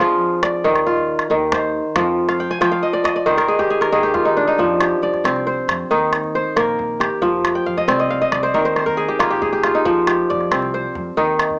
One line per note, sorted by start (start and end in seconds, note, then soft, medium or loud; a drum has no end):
0.00 0.15 F3 medium
0.00 0.69 F3 medium
0.00 0.92 C4 medium
0.00 0.71 D4 medium
0.00 0.86 F4 medium
0.00 1.14 G#4 medium
0.43 1.37 D5 medium
0.43 calabash thump medium
0.43 calabash click medium
0.64 1.14 D#2 medium
0.64 1.29 D#3 medium
0.64 calabash click soft
0.76 calabash click soft
0.87 2.38 F4 medium
0.97 calabash thump medium
1.19 calabash click medium
1.30 1.80 D#2 medium
1.30 2.00 D#3 medium
1.52 2.71 C5 medium
1.52 calabash thump medium
1.52 calabash click medium
1.96 2.45 F2 loud
1.96 2.60 F3 medium
1.96 calabash thump medium
1.96 calabash click medium
2.29 2.71 F5 medium
2.29 calabash click medium
2.40 2.60 G5 medium
2.51 3.41 G#5 medium
2.51 calabash thump soft
2.51 calabash click soft
2.61 3.32 F3 medium
2.61 2.78 F3 medium
2.61 3.55 G5 medium
2.61 calabash click medium
2.72 3.72 F5 medium
2.72 calabash click soft
2.83 3.04 D#5 medium
2.93 3.16 D5 medium
3.04 4.11 D#5 medium
3.04 calabash thump medium
3.04 calabash click medium
3.16 3.99 D5 medium
3.26 3.77 D#2 medium
3.26 3.91 D#3 medium
3.26 4.45 C5 medium
3.38 3.81 A#4 medium
3.38 calabash click medium
3.48 3.70 G#4 medium
3.59 3.98 G4 medium
3.59 calabash thump medium
3.70 3.92 G#4 medium
3.81 5.08 A#4 medium
3.81 calabash click medium
3.92 4.42 D#2 medium
3.92 4.64 D#3 medium
3.92 4.87 G#4 medium
4.03 4.80 G4 medium
4.14 5.65 F4 medium
4.14 calabash thump medium
4.25 4.47 D#4 medium
4.37 5.96 D4 medium
4.48 5.09 D#4 medium
4.58 4.92 F2 medium
4.58 5.95 F3 medium
4.58 calabash thump medium
4.80 6.22 G4 medium
4.80 calabash click medium
5.02 5.19 F2 medium
5.02 5.97 D5 medium
5.14 calabash thump medium
5.14 calabash click soft
5.24 5.58 C2 loud
5.24 7.05 C4 medium
5.24 calabash click medium
5.36 calabash click soft
5.47 6.35 C5 medium
5.68 5.85 F2 medium
5.68 calabash click medium
5.90 6.40 D#2 medium
5.90 7.27 D#3 medium
5.90 7.53 D#4 medium
6.12 calabash click medium
6.23 calabash thump soft
6.35 7.54 C5 medium
6.56 7.06 A#1 medium
6.56 8.49 A#3 medium
6.56 7.84 A#4 medium
6.56 calabash click medium
6.79 calabash thump medium
7.00 8.41 G4 medium
7.00 calabash click medium
7.22 7.56 F2 medium
7.22 8.59 F3 medium
7.22 calabash thump medium
7.45 calabash click medium
7.55 8.48 G5 medium
7.66 7.83 F2 medium
7.66 8.10 F5 medium
7.77 7.99 D#5 medium
7.77 calabash thump soft
7.77 calabash click soft
7.88 8.21 C2 medium
7.88 9.68 C4 medium
7.88 8.27 D5 medium
7.88 calabash click medium
7.99 8.21 D#5 medium
7.99 calabash click soft
8.10 9.10 F5 medium
8.21 9.28 D#5 medium
8.32 8.49 C2 medium
8.32 8.60 D5 medium
8.32 calabash thump medium
8.32 calabash click medium
8.43 8.65 C5 medium
8.54 9.04 D#2 medium
8.54 9.91 D#3 medium
8.54 8.86 A#4 medium
8.65 8.76 C5 medium
8.76 9.95 C5 medium
8.76 calabash click medium
8.86 10.13 A#4 medium
8.86 calabash thump soft
8.97 9.36 G#4 medium
9.08 9.30 G4 medium
9.19 9.70 A#1 medium
9.19 11.12 A#3 medium
9.19 9.64 F4 medium
9.19 calabash click medium
9.30 9.52 G4 medium
9.42 10.13 G#4 medium
9.42 calabash thump medium
9.53 10.07 G4 medium
9.64 11.16 F4 medium
9.64 calabash click medium
9.75 10.36 D#4 medium
9.85 10.19 F2 medium
9.85 11.22 F3 medium
9.85 calabash thump medium
10.07 11.48 G4 medium
10.07 calabash click medium
10.30 10.47 F2 medium
10.30 11.23 D5 medium
10.41 calabash click soft
10.51 10.85 C2 loud
10.51 11.59 C4 medium
10.51 calabash click medium
10.62 calabash click soft
10.74 11.59 C5 medium
10.95 11.12 F2 medium
10.95 calabash thump medium
11.17 11.59 D#2 medium
11.17 11.59 D#3 medium
11.17 11.59 D#4 medium
11.40 calabash click medium
11.50 calabash thump medium